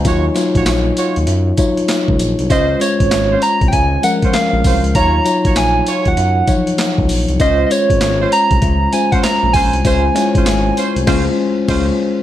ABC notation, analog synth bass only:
X:1
M:4/4
L:1/16
Q:"Swing 16ths" 1/4=98
K:Db
V:1 name="Analog synth bass" clef=bass
E,,2 z B,,, B,,,2 z E,, G,,2 z3 D,, B,,, C,, | D,,2 z A,,, A,,,2 z C,, D,,2 z3 B,,, C,, D,, | E,,2 z B,,, B,,,2 z E,, G,,2 z3 D,, B,,, C,, | D,,2 z A,,, A,,,2 z C,, D,,2 z3 B,,, B,,, C,, |
D,,2 z A,,, A,,,2 z C,, D,,2 z2 D,,2 z2 |]